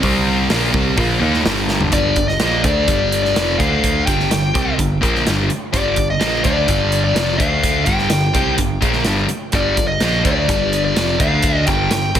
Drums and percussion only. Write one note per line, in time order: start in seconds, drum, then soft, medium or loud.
0.03 kick medium
0.03 open hi-hat medium
0.50 snare loud
0.50 open hi-hat medium
0.74 kick loud
0.97 kick loud
0.97 open hi-hat medium
1.34 snare soft
1.45 snare loud
1.45 open hi-hat medium
1.68 snare medium
1.81 floor tom medium
1.92 kick medium
1.92 closed hi-hat medium
2.16 kick medium
2.16 closed hi-hat medium
2.29 snare soft
2.40 snare loud
2.40 closed hi-hat medium
2.64 kick loud
2.64 closed hi-hat medium
2.88 kick loud
2.88 closed hi-hat medium
3.12 closed hi-hat medium
3.25 snare soft
3.36 snare medium
3.36 closed hi-hat medium
3.60 kick medium
3.60 closed hi-hat medium
3.84 kick medium
3.84 closed hi-hat medium
4.07 kick medium
4.07 closed hi-hat medium
4.20 snare soft
4.31 snare loud
4.31 closed hi-hat medium
4.55 kick loud
4.55 closed hi-hat medium
4.79 kick medium
4.79 closed hi-hat medium
5.03 kick medium
5.03 closed hi-hat medium
5.15 snare soft
5.27 snare loud
5.27 closed hi-hat medium
5.50 closed hi-hat medium
5.74 kick loud
5.74 closed hi-hat medium
5.96 kick medium
5.96 closed hi-hat medium
6.21 snare loud
6.21 closed hi-hat medium
6.44 kick loud
6.44 closed hi-hat medium
6.68 kick medium
6.68 closed hi-hat medium
6.92 closed hi-hat medium
7.16 snare loud
7.16 closed hi-hat medium
7.40 kick loud
7.40 closed hi-hat medium
7.63 kick medium
7.63 closed hi-hat medium
7.86 kick medium
7.86 closed hi-hat medium
7.98 snare soft
8.10 snare loud
8.10 closed hi-hat medium
8.34 kick loud
8.34 closed hi-hat medium
8.58 kick medium
8.58 closed hi-hat medium
8.82 kick medium
8.82 closed hi-hat medium
8.93 snare soft
9.04 snare loud
9.04 closed hi-hat medium
9.29 closed hi-hat medium
9.52 kick loud
9.52 closed hi-hat medium
9.77 kick medium
9.77 closed hi-hat medium
10.00 snare loud
10.00 closed hi-hat medium
10.25 kick loud
10.25 closed hi-hat medium
10.49 kick loud
10.49 closed hi-hat medium
10.73 closed hi-hat medium
10.96 snare loud
10.96 closed hi-hat medium
11.20 kick medium
11.20 closed hi-hat medium
11.43 kick loud
11.43 closed hi-hat medium
11.67 kick loud
11.67 closed hi-hat medium
11.91 snare loud
11.91 closed hi-hat medium
12.15 kick loud
12.15 closed hi-hat medium